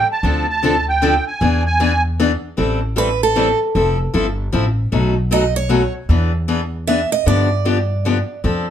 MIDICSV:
0, 0, Header, 1, 5, 480
1, 0, Start_track
1, 0, Key_signature, 0, "minor"
1, 0, Tempo, 390879
1, 290, Time_signature, 3, 2, 24, 8
1, 10686, End_track
2, 0, Start_track
2, 0, Title_t, "Accordion"
2, 0, Program_c, 0, 21
2, 145, Note_on_c, 0, 81, 97
2, 575, Note_off_c, 0, 81, 0
2, 615, Note_on_c, 0, 81, 108
2, 1050, Note_off_c, 0, 81, 0
2, 1096, Note_on_c, 0, 79, 99
2, 1530, Note_off_c, 0, 79, 0
2, 1564, Note_on_c, 0, 80, 95
2, 2004, Note_off_c, 0, 80, 0
2, 2046, Note_on_c, 0, 80, 118
2, 2485, Note_off_c, 0, 80, 0
2, 10686, End_track
3, 0, Start_track
3, 0, Title_t, "Steel-string acoustic guitar"
3, 0, Program_c, 1, 25
3, 3661, Note_on_c, 1, 71, 79
3, 3947, Note_off_c, 1, 71, 0
3, 3969, Note_on_c, 1, 69, 83
3, 4407, Note_off_c, 1, 69, 0
3, 6539, Note_on_c, 1, 75, 94
3, 6824, Note_off_c, 1, 75, 0
3, 6829, Note_on_c, 1, 73, 95
3, 7276, Note_off_c, 1, 73, 0
3, 8441, Note_on_c, 1, 76, 84
3, 8737, Note_off_c, 1, 76, 0
3, 8745, Note_on_c, 1, 75, 89
3, 8921, Note_off_c, 1, 75, 0
3, 8936, Note_on_c, 1, 74, 77
3, 10323, Note_off_c, 1, 74, 0
3, 10686, End_track
4, 0, Start_track
4, 0, Title_t, "Steel-string acoustic guitar"
4, 0, Program_c, 2, 25
4, 288, Note_on_c, 2, 50, 68
4, 296, Note_on_c, 2, 53, 79
4, 298, Note_on_c, 2, 60, 74
4, 302, Note_on_c, 2, 62, 76
4, 303, Note_on_c, 2, 69, 81
4, 550, Note_off_c, 2, 50, 0
4, 554, Note_off_c, 2, 53, 0
4, 555, Note_off_c, 2, 60, 0
4, 557, Note_off_c, 2, 62, 0
4, 558, Note_off_c, 2, 69, 0
4, 770, Note_on_c, 2, 50, 87
4, 778, Note_on_c, 2, 53, 90
4, 779, Note_on_c, 2, 60, 93
4, 787, Note_on_c, 2, 62, 93
4, 788, Note_on_c, 2, 69, 110
4, 908, Note_off_c, 2, 50, 0
4, 912, Note_off_c, 2, 53, 0
4, 912, Note_off_c, 2, 60, 0
4, 916, Note_off_c, 2, 62, 0
4, 917, Note_off_c, 2, 69, 0
4, 1251, Note_on_c, 2, 50, 92
4, 1256, Note_on_c, 2, 53, 92
4, 1260, Note_on_c, 2, 62, 101
4, 1262, Note_on_c, 2, 60, 97
4, 1264, Note_on_c, 2, 69, 101
4, 1388, Note_off_c, 2, 50, 0
4, 1391, Note_off_c, 2, 53, 0
4, 1393, Note_off_c, 2, 62, 0
4, 1394, Note_off_c, 2, 60, 0
4, 1395, Note_off_c, 2, 69, 0
4, 1729, Note_on_c, 2, 52, 69
4, 1737, Note_on_c, 2, 59, 74
4, 1744, Note_on_c, 2, 68, 76
4, 1745, Note_on_c, 2, 62, 71
4, 1990, Note_off_c, 2, 52, 0
4, 1994, Note_off_c, 2, 59, 0
4, 1998, Note_off_c, 2, 62, 0
4, 1998, Note_off_c, 2, 68, 0
4, 2209, Note_on_c, 2, 59, 92
4, 2211, Note_on_c, 2, 52, 95
4, 2212, Note_on_c, 2, 62, 102
4, 2219, Note_on_c, 2, 68, 102
4, 2347, Note_off_c, 2, 59, 0
4, 2348, Note_off_c, 2, 52, 0
4, 2349, Note_off_c, 2, 62, 0
4, 2352, Note_off_c, 2, 68, 0
4, 2696, Note_on_c, 2, 52, 85
4, 2697, Note_on_c, 2, 59, 104
4, 2702, Note_on_c, 2, 62, 103
4, 2704, Note_on_c, 2, 68, 108
4, 2831, Note_off_c, 2, 52, 0
4, 2831, Note_off_c, 2, 59, 0
4, 2834, Note_off_c, 2, 62, 0
4, 2835, Note_off_c, 2, 68, 0
4, 3155, Note_on_c, 2, 52, 65
4, 3161, Note_on_c, 2, 55, 76
4, 3163, Note_on_c, 2, 60, 74
4, 3165, Note_on_c, 2, 64, 72
4, 3171, Note_on_c, 2, 69, 72
4, 3423, Note_off_c, 2, 52, 0
4, 3426, Note_off_c, 2, 55, 0
4, 3427, Note_off_c, 2, 60, 0
4, 3428, Note_off_c, 2, 64, 0
4, 3431, Note_off_c, 2, 69, 0
4, 3634, Note_on_c, 2, 52, 82
4, 3637, Note_on_c, 2, 55, 89
4, 3640, Note_on_c, 2, 60, 91
4, 3644, Note_on_c, 2, 69, 96
4, 3647, Note_on_c, 2, 64, 88
4, 3779, Note_off_c, 2, 52, 0
4, 3781, Note_off_c, 2, 55, 0
4, 3783, Note_off_c, 2, 60, 0
4, 3784, Note_off_c, 2, 69, 0
4, 3786, Note_off_c, 2, 64, 0
4, 4122, Note_on_c, 2, 52, 88
4, 4128, Note_on_c, 2, 55, 91
4, 4130, Note_on_c, 2, 60, 98
4, 4134, Note_on_c, 2, 64, 90
4, 4134, Note_on_c, 2, 69, 96
4, 4264, Note_off_c, 2, 52, 0
4, 4267, Note_off_c, 2, 55, 0
4, 4268, Note_off_c, 2, 60, 0
4, 4270, Note_off_c, 2, 64, 0
4, 4270, Note_off_c, 2, 69, 0
4, 4605, Note_on_c, 2, 53, 70
4, 4610, Note_on_c, 2, 60, 70
4, 4613, Note_on_c, 2, 64, 73
4, 4621, Note_on_c, 2, 69, 81
4, 4868, Note_off_c, 2, 53, 0
4, 4871, Note_off_c, 2, 60, 0
4, 4872, Note_off_c, 2, 64, 0
4, 4876, Note_off_c, 2, 69, 0
4, 5079, Note_on_c, 2, 53, 84
4, 5082, Note_on_c, 2, 60, 94
4, 5086, Note_on_c, 2, 64, 103
4, 5090, Note_on_c, 2, 69, 99
4, 5222, Note_off_c, 2, 53, 0
4, 5224, Note_off_c, 2, 60, 0
4, 5226, Note_off_c, 2, 64, 0
4, 5228, Note_off_c, 2, 69, 0
4, 5557, Note_on_c, 2, 53, 93
4, 5564, Note_on_c, 2, 60, 83
4, 5570, Note_on_c, 2, 64, 92
4, 5571, Note_on_c, 2, 69, 100
4, 5701, Note_off_c, 2, 53, 0
4, 5705, Note_off_c, 2, 60, 0
4, 5708, Note_off_c, 2, 64, 0
4, 5708, Note_off_c, 2, 69, 0
4, 6041, Note_on_c, 2, 54, 66
4, 6043, Note_on_c, 2, 47, 75
4, 6044, Note_on_c, 2, 57, 80
4, 6049, Note_on_c, 2, 63, 82
4, 6055, Note_on_c, 2, 66, 74
4, 6306, Note_off_c, 2, 54, 0
4, 6307, Note_off_c, 2, 47, 0
4, 6308, Note_off_c, 2, 57, 0
4, 6310, Note_off_c, 2, 63, 0
4, 6313, Note_off_c, 2, 66, 0
4, 6518, Note_on_c, 2, 47, 86
4, 6523, Note_on_c, 2, 54, 84
4, 6528, Note_on_c, 2, 57, 95
4, 6530, Note_on_c, 2, 66, 95
4, 6532, Note_on_c, 2, 63, 92
4, 6662, Note_off_c, 2, 47, 0
4, 6664, Note_off_c, 2, 54, 0
4, 6667, Note_off_c, 2, 57, 0
4, 6668, Note_off_c, 2, 66, 0
4, 6669, Note_off_c, 2, 63, 0
4, 6990, Note_on_c, 2, 47, 90
4, 6994, Note_on_c, 2, 57, 92
4, 6995, Note_on_c, 2, 54, 98
4, 7002, Note_on_c, 2, 66, 99
4, 7004, Note_on_c, 2, 63, 99
4, 7138, Note_off_c, 2, 47, 0
4, 7140, Note_off_c, 2, 54, 0
4, 7140, Note_off_c, 2, 57, 0
4, 7144, Note_off_c, 2, 66, 0
4, 7145, Note_off_c, 2, 63, 0
4, 7483, Note_on_c, 2, 52, 68
4, 7492, Note_on_c, 2, 59, 71
4, 7493, Note_on_c, 2, 62, 74
4, 7497, Note_on_c, 2, 68, 80
4, 7747, Note_off_c, 2, 52, 0
4, 7752, Note_off_c, 2, 59, 0
4, 7752, Note_off_c, 2, 62, 0
4, 7754, Note_off_c, 2, 68, 0
4, 7957, Note_on_c, 2, 52, 90
4, 7962, Note_on_c, 2, 59, 85
4, 7963, Note_on_c, 2, 68, 97
4, 7965, Note_on_c, 2, 62, 92
4, 8101, Note_off_c, 2, 52, 0
4, 8104, Note_off_c, 2, 59, 0
4, 8105, Note_off_c, 2, 68, 0
4, 8106, Note_off_c, 2, 62, 0
4, 8450, Note_on_c, 2, 52, 80
4, 8450, Note_on_c, 2, 59, 84
4, 8455, Note_on_c, 2, 62, 97
4, 8458, Note_on_c, 2, 68, 97
4, 8588, Note_off_c, 2, 52, 0
4, 8588, Note_off_c, 2, 59, 0
4, 8590, Note_off_c, 2, 62, 0
4, 8592, Note_off_c, 2, 68, 0
4, 8914, Note_on_c, 2, 50, 67
4, 8920, Note_on_c, 2, 53, 73
4, 8920, Note_on_c, 2, 59, 81
4, 8923, Note_on_c, 2, 62, 79
4, 8928, Note_on_c, 2, 67, 71
4, 9183, Note_off_c, 2, 50, 0
4, 9186, Note_off_c, 2, 53, 0
4, 9186, Note_off_c, 2, 59, 0
4, 9187, Note_off_c, 2, 62, 0
4, 9190, Note_off_c, 2, 67, 0
4, 9396, Note_on_c, 2, 50, 84
4, 9400, Note_on_c, 2, 53, 88
4, 9401, Note_on_c, 2, 62, 97
4, 9404, Note_on_c, 2, 59, 91
4, 9406, Note_on_c, 2, 67, 96
4, 9541, Note_off_c, 2, 50, 0
4, 9543, Note_off_c, 2, 53, 0
4, 9544, Note_off_c, 2, 62, 0
4, 9545, Note_off_c, 2, 59, 0
4, 9546, Note_off_c, 2, 67, 0
4, 9886, Note_on_c, 2, 50, 87
4, 9888, Note_on_c, 2, 53, 86
4, 9896, Note_on_c, 2, 59, 91
4, 9899, Note_on_c, 2, 67, 95
4, 9900, Note_on_c, 2, 62, 97
4, 10026, Note_off_c, 2, 50, 0
4, 10027, Note_off_c, 2, 53, 0
4, 10031, Note_off_c, 2, 59, 0
4, 10032, Note_off_c, 2, 67, 0
4, 10033, Note_off_c, 2, 62, 0
4, 10362, Note_on_c, 2, 53, 71
4, 10367, Note_on_c, 2, 60, 74
4, 10372, Note_on_c, 2, 69, 83
4, 10373, Note_on_c, 2, 62, 71
4, 10627, Note_off_c, 2, 53, 0
4, 10629, Note_off_c, 2, 60, 0
4, 10632, Note_off_c, 2, 62, 0
4, 10632, Note_off_c, 2, 69, 0
4, 10686, End_track
5, 0, Start_track
5, 0, Title_t, "Upright bass"
5, 0, Program_c, 3, 32
5, 284, Note_on_c, 3, 38, 94
5, 1438, Note_off_c, 3, 38, 0
5, 1732, Note_on_c, 3, 40, 94
5, 2883, Note_off_c, 3, 40, 0
5, 3169, Note_on_c, 3, 33, 88
5, 4321, Note_off_c, 3, 33, 0
5, 4606, Note_on_c, 3, 29, 86
5, 4991, Note_off_c, 3, 29, 0
5, 5087, Note_on_c, 3, 31, 85
5, 5496, Note_off_c, 3, 31, 0
5, 5565, Note_on_c, 3, 33, 81
5, 5975, Note_off_c, 3, 33, 0
5, 6049, Note_on_c, 3, 35, 91
5, 7201, Note_off_c, 3, 35, 0
5, 7478, Note_on_c, 3, 40, 96
5, 8634, Note_off_c, 3, 40, 0
5, 8922, Note_on_c, 3, 43, 92
5, 10077, Note_off_c, 3, 43, 0
5, 10366, Note_on_c, 3, 41, 96
5, 10686, Note_off_c, 3, 41, 0
5, 10686, End_track
0, 0, End_of_file